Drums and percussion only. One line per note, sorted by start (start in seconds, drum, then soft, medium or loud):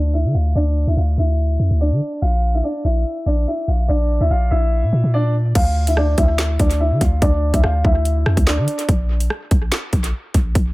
5.55 kick loud
5.55 closed hi-hat medium
5.55 crash loud
5.87 closed hi-hat medium
5.97 cross-stick medium
6.18 kick loud
6.18 closed hi-hat medium
6.38 snare loud
6.38 clap medium
6.38 closed hi-hat medium
6.59 kick loud
6.59 closed hi-hat medium
6.71 closed hi-hat medium
7.01 kick medium
7.01 closed hi-hat medium
7.22 kick loud
7.22 closed hi-hat medium
7.54 kick medium
7.54 closed hi-hat medium
7.64 cross-stick loud
7.85 kick medium
8.05 closed hi-hat medium
8.26 cross-stick loud
8.37 kick loud
8.37 closed hi-hat medium
8.47 snare loud
8.47 clap medium
8.68 closed hi-hat medium
8.79 closed hi-hat medium
8.89 kick loud
8.89 closed hi-hat medium
9.20 closed hi-hat medium
9.30 cross-stick medium
9.51 kick loud
9.51 closed hi-hat medium
9.72 snare loud
9.72 clap medium
9.72 closed hi-hat medium
9.93 kick medium
9.93 closed hi-hat medium
10.04 closed hi-hat medium
10.34 kick medium
10.34 closed hi-hat medium
10.55 kick loud
10.55 closed hi-hat medium